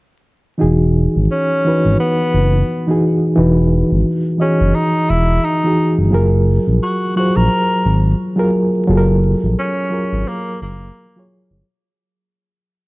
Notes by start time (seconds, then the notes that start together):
0.58 E3 D#4 F#4 G#4
0.62 E1
1.16 G#1
1.31 C#4
1.65 E3 D#4 F#4 B4
1.85 G#1
2.00 B3
2.34 F#1
2.87 E3 D#4 F#4 G#4
3.36 E1 E3 D#4 F#4 B4
3.92 G#1
4.38 E3 C#4 F#4 G#4 D#5
4.61 F#1
4.75 D#4
5.10 E1 E4
5.44 D#4
5.64 E3 D#4 F#4 G#4
5.98 G1
6.11 F#1 F#3 F4 G#4 A#4
6.67 A#1
6.83 F#4
7.16 F#3 F4 F#4 G#4 C5
7.36 A#1 A#4
7.85 G#1
8.36 F#3 F4 G#4 A#4
8.87 F#1 F#3 F4 G#4 A4
8.97 A#4
9.44 A#1
9.59 C#4
9.90 F#3 F4 G#4 A#4
10.13 G#1
10.28 A#3
10.62 F#1 A#3
11.16 F#3 F4 G#4 C#5
11.51 G1